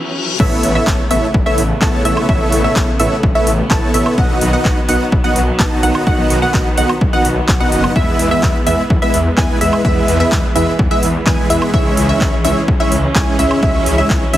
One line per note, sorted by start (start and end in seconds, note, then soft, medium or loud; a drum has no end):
0.00 0.36 E3 medium
0.00 0.38 F#3 medium
0.00 0.36 C#4 medium
0.00 reverse cymbal medium
0.40 0.55 A1 loud
0.40 4.14 C#3 medium
0.40 4.14 A3 medium
0.40 0.72 B3 loud
0.40 11.70 B3 medium
0.40 0.72 E4 medium
0.40 0.72 A4 medium
0.40 0.72 C#5 medium
0.40 0.72 E5 loud
0.40 kick loud
0.40 crash loud
0.40 impact medium
0.63 0.78 A1 medium
0.63 open hi-hat loud
0.75 1.01 B3 medium
0.75 1.01 E4 medium
0.75 1.01 A4 medium
0.75 1.01 C#5 medium
0.75 1.01 E5 medium
0.87 0.94 A1 medium
0.87 kick loud
0.87 clap loud
1.11 1.18 A1 medium
1.11 1.27 B3 medium
1.11 1.27 E4 medium
1.11 1.27 A4 medium
1.11 1.27 C#5 medium
1.11 1.27 E5 medium
1.11 open hi-hat medium
1.34 1.42 A1 medium
1.34 kick loud
1.46 1.62 B3 medium
1.46 1.62 E4 medium
1.46 1.62 A4 medium
1.46 1.62 C#5 medium
1.46 1.62 E5 loud
1.58 1.73 A1 medium
1.58 open hi-hat loud
1.82 1.89 A1 loud
1.82 2.02 B3 medium
1.82 2.02 E4 medium
1.82 2.02 A4 medium
1.82 2.02 C#5 medium
1.82 2.02 A5 medium
1.82 kick loud
1.82 clap loud
2.05 2.13 A1 medium
2.05 2.26 B3 medium
2.05 2.26 E4 medium
2.05 2.26 A4 medium
2.05 2.26 C#5 medium
2.05 2.26 E5 medium
2.05 open hi-hat loud
2.17 high woodblock medium
2.29 2.44 A1 loud
2.29 2.61 B3 loud
2.29 2.61 E4 medium
2.29 2.61 A4 medium
2.29 2.61 C#5 medium
2.29 2.61 E5 loud
2.29 kick loud
2.52 2.67 A1 medium
2.52 open hi-hat loud
2.64 2.90 B3 medium
2.64 2.90 E4 medium
2.64 2.90 A4 medium
2.64 2.90 C#5 medium
2.64 2.90 E5 medium
2.76 2.83 A1 medium
2.76 kick loud
2.76 clap loud
3.00 3.07 A1 medium
3.00 3.16 B3 medium
3.00 3.16 E4 medium
3.00 3.16 A4 medium
3.00 3.16 C#5 medium
3.00 3.16 E5 medium
3.00 open hi-hat loud
3.23 3.31 A1 medium
3.23 kick loud
3.35 3.51 B3 medium
3.35 3.51 E4 medium
3.35 3.51 A4 medium
3.35 3.51 C#5 medium
3.35 3.51 E5 loud
3.47 3.62 A1 medium
3.47 open hi-hat loud
3.71 3.78 A1 loud
3.71 3.91 B3 medium
3.71 3.91 E4 medium
3.71 3.91 A4 medium
3.71 3.91 C#5 medium
3.71 3.91 A5 medium
3.71 kick loud
3.71 clap loud
3.94 4.02 A1 loud
3.94 4.15 B3 medium
3.94 4.15 E4 medium
3.94 4.15 A4 medium
3.94 4.15 C#5 medium
3.94 4.15 E5 medium
3.94 open hi-hat loud
4.06 high woodblock medium
4.18 4.33 B1 loud
4.18 7.92 D#3 medium
4.18 7.92 F#3 medium
4.18 4.50 B3 loud
4.18 4.50 D#4 medium
4.18 4.50 F#4 medium
4.18 4.50 D#5 medium
4.18 4.50 F#5 loud
4.18 kick loud
4.41 4.56 B1 medium
4.41 open hi-hat loud
4.53 4.79 B3 medium
4.53 4.79 D#4 medium
4.53 4.79 F#4 medium
4.53 4.79 D#5 medium
4.53 4.79 F#5 medium
4.65 4.72 B1 medium
4.65 kick loud
4.65 clap loud
4.89 4.96 B1 medium
4.89 5.04 B3 medium
4.89 5.04 D#4 medium
4.89 5.04 F#4 medium
4.89 5.04 D#5 medium
4.89 5.04 F#5 medium
4.89 open hi-hat loud
5.12 5.20 B1 medium
5.12 kick loud
5.24 5.40 B3 medium
5.24 5.40 D#4 medium
5.24 5.40 F#4 medium
5.24 5.40 D#5 medium
5.24 5.40 F#5 loud
5.36 5.51 B1 medium
5.36 open hi-hat loud
5.59 5.67 B1 loud
5.59 5.80 B3 medium
5.59 5.80 D#4 medium
5.59 5.80 F#4 medium
5.59 5.80 D#5 medium
5.59 5.80 A5 medium
5.59 kick loud
5.59 clap loud
5.83 5.91 B1 loud
5.83 6.04 B3 medium
5.83 6.04 D#4 medium
5.83 6.04 F#4 medium
5.83 6.04 D#5 medium
5.83 6.04 F#5 medium
5.83 open hi-hat loud
5.95 high woodblock medium
6.07 6.21 B1 loud
6.07 6.39 B3 loud
6.07 6.39 D#4 medium
6.07 6.39 F#4 medium
6.07 6.39 D#5 medium
6.07 6.39 F#5 loud
6.07 kick loud
6.30 6.45 B1 medium
6.30 open hi-hat loud
6.42 6.68 B3 medium
6.42 6.68 D#4 medium
6.42 6.68 F#4 medium
6.42 6.68 D#5 medium
6.42 6.68 F#5 medium
6.54 6.61 B1 medium
6.54 kick loud
6.54 clap loud
6.78 6.85 B1 medium
6.78 6.93 B3 medium
6.78 6.93 D#4 medium
6.78 6.93 F#4 medium
6.78 6.93 D#5 medium
6.78 6.93 F#5 medium
6.78 open hi-hat loud
6.89 high woodblock medium
7.01 7.09 B1 medium
7.01 kick loud
7.13 7.29 B3 medium
7.13 7.29 D#4 medium
7.13 7.29 F#4 medium
7.13 7.29 D#5 medium
7.13 7.29 F#5 loud
7.25 7.40 B1 medium
7.25 open hi-hat loud
7.48 7.63 B1 loud
7.48 kick loud
7.48 clap loud
7.60 7.93 B3 medium
7.60 7.93 D#4 medium
7.60 7.93 F#4 medium
7.60 7.93 D#5 medium
7.60 7.93 F#5 medium
7.72 7.87 F#1 medium
7.72 open hi-hat medium
7.84 high woodblock medium
7.96 8.10 E2 loud
7.96 14.37 E3 medium
7.96 8.28 G#3 loud
7.96 11.70 G#3 medium
7.96 8.28 B3 medium
7.96 8.28 E4 medium
7.96 8.28 B4 medium
7.96 8.28 E5 loud
7.96 kick loud
8.19 8.34 E2 medium
8.19 open hi-hat loud
8.31 8.56 G#3 medium
8.31 8.56 B3 medium
8.31 8.56 E4 medium
8.31 8.56 B4 medium
8.31 8.56 E5 medium
8.31 8.57 E5 medium
8.43 8.50 E2 medium
8.43 kick loud
8.43 clap loud
8.67 8.74 E2 medium
8.67 8.82 G#3 medium
8.67 8.82 B3 medium
8.67 8.82 E4 medium
8.67 8.82 B4 medium
8.67 8.82 E5 medium
8.67 open hi-hat medium
8.90 8.98 E2 medium
8.90 kick loud
9.02 9.18 G#3 medium
9.02 9.18 B3 medium
9.02 9.18 E4 medium
9.02 9.18 B4 medium
9.02 9.18 E5 loud
9.14 9.29 E2 medium
9.14 open hi-hat loud
9.37 9.45 E2 loud
9.37 9.58 G#3 medium
9.37 9.58 B3 medium
9.37 9.58 E4 medium
9.37 9.58 B4 medium
9.37 9.58 G#5 medium
9.37 kick loud
9.37 clap loud
9.61 9.68 E2 medium
9.61 9.82 G#3 medium
9.61 9.82 B3 medium
9.61 9.82 E4 medium
9.61 9.82 B4 medium
9.61 9.82 E5 medium
9.61 open hi-hat medium
9.73 high woodblock medium
9.85 9.99 E2 loud
9.85 10.17 G#3 loud
9.85 10.17 B3 medium
9.85 10.17 E4 medium
9.85 10.17 B4 medium
9.85 10.17 E5 loud
9.85 kick loud
10.08 10.23 E2 medium
10.08 open hi-hat loud
10.20 10.45 G#3 medium
10.20 10.45 B3 medium
10.20 10.45 E4 medium
10.20 10.45 B4 medium
10.20 10.45 E5 medium
10.32 10.39 E2 medium
10.32 kick loud
10.32 clap loud
10.56 10.63 E2 medium
10.56 10.71 G#3 medium
10.56 10.71 B3 medium
10.56 10.71 E4 medium
10.56 10.71 B4 medium
10.56 10.71 E5 medium
10.56 open hi-hat medium
10.79 10.87 E2 medium
10.79 kick loud
10.91 11.07 G#3 medium
10.91 11.07 B3 medium
10.91 11.07 E4 medium
10.91 11.07 B4 medium
10.91 11.07 E5 loud
11.03 11.18 E2 medium
11.03 open hi-hat loud
11.26 11.34 E2 loud
11.26 11.47 G#3 medium
11.26 11.47 B3 medium
11.26 11.47 E4 medium
11.26 11.47 B4 medium
11.26 11.47 G#5 medium
11.26 kick loud
11.26 clap loud
11.50 11.57 E2 medium
11.50 11.71 G#3 medium
11.50 11.71 B3 medium
11.50 11.71 E4 medium
11.50 11.71 B4 medium
11.50 11.71 E5 medium
11.50 open hi-hat medium
11.62 high woodblock medium
11.74 11.88 C#2 loud
11.74 12.06 G#3 loud
11.74 13.61 G#3 medium
11.74 12.06 C#4 medium
11.74 14.37 C#4 medium
11.74 12.06 E4 medium
11.74 12.06 C#5 medium
11.74 12.06 E5 loud
11.74 kick loud
11.97 12.12 C#2 medium
11.97 open hi-hat loud
12.09 12.34 G#3 medium
12.09 12.34 C#4 medium
12.09 12.34 E4 medium
12.09 12.34 C#5 medium
12.09 12.34 E5 medium
12.21 12.28 C#2 medium
12.21 kick loud
12.21 clap loud
12.44 12.52 C#2 medium
12.44 12.60 G#3 medium
12.44 12.60 C#4 medium
12.44 12.60 E4 medium
12.44 12.60 C#5 medium
12.44 12.60 E5 medium
12.44 open hi-hat medium
12.68 12.76 C#2 medium
12.68 kick loud
12.80 12.96 G#3 loud
12.80 12.96 C#4 medium
12.80 12.96 E4 medium
12.80 12.96 C#5 medium
12.80 12.96 E5 loud
12.92 13.06 C#2 medium
12.92 open hi-hat loud
13.15 13.23 C#2 loud
13.15 13.36 G#3 medium
13.15 13.36 C#4 medium
13.15 13.36 E4 medium
13.15 13.36 C#5 medium
13.15 13.36 G#5 medium
13.15 kick loud
13.15 clap loud
13.39 13.46 C#2 loud
13.39 13.60 G#3 medium
13.39 13.60 C#4 medium
13.39 13.60 E4 medium
13.39 13.60 C#5 medium
13.39 13.60 E5 medium
13.39 open hi-hat medium
13.51 high woodblock medium
13.63 13.77 C#2 loud
13.63 14.37 F#3 medium
13.63 13.95 G#3 loud
13.63 13.95 C#4 medium
13.63 13.95 E4 medium
13.63 13.95 C#5 medium
13.63 13.95 E5 loud
13.63 kick loud
13.86 14.01 C#2 medium
13.86 open hi-hat loud
13.98 14.23 G#3 medium
13.98 14.23 C#4 medium
13.98 14.23 E4 medium
13.98 14.23 C#5 medium
13.98 14.23 E5 medium
14.10 14.17 C#2 medium
14.10 kick loud
14.10 clap loud
14.34 14.37 C#2 medium
14.34 14.37 G#3 medium
14.34 14.37 C#4 medium
14.34 14.37 E4 medium
14.34 14.37 C#5 medium
14.34 14.37 E5 medium
14.34 open hi-hat medium